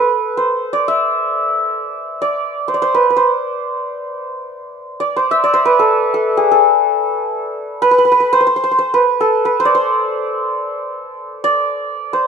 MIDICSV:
0, 0, Header, 1, 2, 480
1, 0, Start_track
1, 0, Tempo, 500000
1, 11781, End_track
2, 0, Start_track
2, 0, Title_t, "Santur"
2, 0, Program_c, 0, 15
2, 0, Note_on_c, 0, 69, 45
2, 0, Note_on_c, 0, 71, 66
2, 359, Note_on_c, 0, 72, 63
2, 416, Note_off_c, 0, 71, 0
2, 701, Note_on_c, 0, 74, 72
2, 845, Note_on_c, 0, 76, 67
2, 1712, Note_off_c, 0, 69, 0
2, 2124, Note_off_c, 0, 74, 0
2, 2128, Note_on_c, 0, 74, 72
2, 2569, Note_off_c, 0, 72, 0
2, 2573, Note_on_c, 0, 72, 62
2, 2627, Note_off_c, 0, 74, 0
2, 2631, Note_on_c, 0, 74, 56
2, 2703, Note_off_c, 0, 72, 0
2, 2707, Note_on_c, 0, 72, 80
2, 2828, Note_on_c, 0, 71, 69
2, 2885, Note_off_c, 0, 72, 0
2, 2975, Note_off_c, 0, 71, 0
2, 2979, Note_on_c, 0, 71, 48
2, 3039, Note_on_c, 0, 72, 62
2, 3049, Note_off_c, 0, 76, 0
2, 3096, Note_off_c, 0, 71, 0
2, 4797, Note_off_c, 0, 74, 0
2, 4801, Note_on_c, 0, 74, 71
2, 4955, Note_off_c, 0, 72, 0
2, 4958, Note_on_c, 0, 72, 72
2, 5099, Note_on_c, 0, 76, 83
2, 5216, Note_off_c, 0, 74, 0
2, 5219, Note_on_c, 0, 74, 77
2, 5311, Note_off_c, 0, 72, 0
2, 5315, Note_on_c, 0, 72, 78
2, 5429, Note_on_c, 0, 71, 74
2, 5486, Note_off_c, 0, 72, 0
2, 5562, Note_on_c, 0, 69, 65
2, 5891, Note_off_c, 0, 69, 0
2, 5894, Note_on_c, 0, 69, 58
2, 6118, Note_on_c, 0, 68, 60
2, 6176, Note_off_c, 0, 69, 0
2, 6254, Note_on_c, 0, 69, 68
2, 6312, Note_off_c, 0, 68, 0
2, 7303, Note_off_c, 0, 76, 0
2, 7502, Note_off_c, 0, 71, 0
2, 7506, Note_on_c, 0, 71, 86
2, 7585, Note_off_c, 0, 74, 0
2, 7592, Note_off_c, 0, 71, 0
2, 7596, Note_on_c, 0, 71, 61
2, 7660, Note_off_c, 0, 71, 0
2, 7664, Note_on_c, 0, 71, 58
2, 7724, Note_off_c, 0, 71, 0
2, 7728, Note_on_c, 0, 71, 55
2, 7789, Note_off_c, 0, 71, 0
2, 7792, Note_on_c, 0, 71, 64
2, 7870, Note_off_c, 0, 71, 0
2, 7874, Note_on_c, 0, 71, 52
2, 7994, Note_on_c, 0, 72, 91
2, 8051, Note_off_c, 0, 71, 0
2, 8065, Note_off_c, 0, 72, 0
2, 8069, Note_on_c, 0, 72, 58
2, 8125, Note_off_c, 0, 72, 0
2, 8129, Note_on_c, 0, 72, 66
2, 8215, Note_off_c, 0, 72, 0
2, 8219, Note_on_c, 0, 72, 58
2, 8287, Note_off_c, 0, 72, 0
2, 8291, Note_on_c, 0, 72, 65
2, 8362, Note_off_c, 0, 72, 0
2, 8365, Note_on_c, 0, 72, 52
2, 8431, Note_off_c, 0, 72, 0
2, 8435, Note_on_c, 0, 72, 63
2, 8580, Note_on_c, 0, 71, 74
2, 8638, Note_off_c, 0, 72, 0
2, 8834, Note_off_c, 0, 69, 0
2, 8838, Note_on_c, 0, 69, 75
2, 9070, Note_off_c, 0, 71, 0
2, 9074, Note_on_c, 0, 71, 65
2, 9215, Note_on_c, 0, 72, 79
2, 9267, Note_on_c, 0, 74, 73
2, 9272, Note_off_c, 0, 71, 0
2, 9353, Note_off_c, 0, 72, 0
2, 9357, Note_on_c, 0, 72, 68
2, 10978, Note_off_c, 0, 74, 0
2, 10982, Note_on_c, 0, 74, 88
2, 11643, Note_off_c, 0, 72, 0
2, 11647, Note_on_c, 0, 72, 70
2, 11649, Note_off_c, 0, 69, 0
2, 11781, Note_off_c, 0, 72, 0
2, 11781, Note_off_c, 0, 74, 0
2, 11781, End_track
0, 0, End_of_file